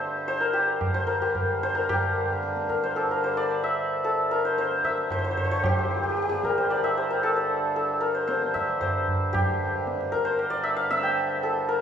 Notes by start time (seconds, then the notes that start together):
Already playing: G2 D3 G4 C5 E5
0.01 tabla te
0.28 C5, tabla tin
0.40 A#4
0.53 G4, tabla na
0.81 tabla na, tabla ge
0.94 C5
1.07 A#4
1.22 G4
1.35 tabla na, tabla ge
1.63 C5, tabla te
1.75 A#4
1.89 G2 D3 G4, tabla na, tabla ge
2.43 tabla te
2.56 tabla te
2.69 A#4, tabla ke
2.84 C5, tabla te
2.96 A4, tabla na
3.11 A#4
3.24 C5, tabla na
3.37 D5
3.51 tabla na
3.64 E5
4.04 A4, tabla tin
4.31 A#4
4.45 C5
4.58 C5, tabla te
4.71 tabla te
4.84 E5, tabla ke
4.98 tabla te
5.10 C5, tabla na, tabla ge
5.19 C5
5.24 C5
5.31 C5
5.37 C5, tabla ge
5.45 C5
5.51 C5
5.64 G4, tabla na, tabla ge
5.71 G4
5.79 G4
5.85 G4
5.91 G4
5.97 G4
6.03 G4
6.09 G4
6.17 G4, tabla te
6.22 G4
6.29 G4, tabla te
6.44 A#4, tabla ke
6.57 C5, tabla te
6.70 D5, tabla na
6.84 E5
6.97 C5
7.11 A#4
7.23 A4, tabla na
7.32 C5 D5
7.76 A4, tabla tin
8.01 A#4
8.15 C5
8.27 C5, tabla te
8.42 tabla te
8.54 E5, tabla ke
8.68 tabla te
8.81 C5, tabla na, tabla ge
9.08 tabla ge
9.33 G4, tabla na, tabla ge
9.87 tabla te
10.01 tabla te
10.12 A#4, tabla ke
10.25 C5, tabla te
10.39 tabla na
10.50 D5
10.63 E5
10.77 F5
10.90 E5, tabla te
11.03 G5
11.17 tabla te
11.43 A4, tabla tin
11.68 A#4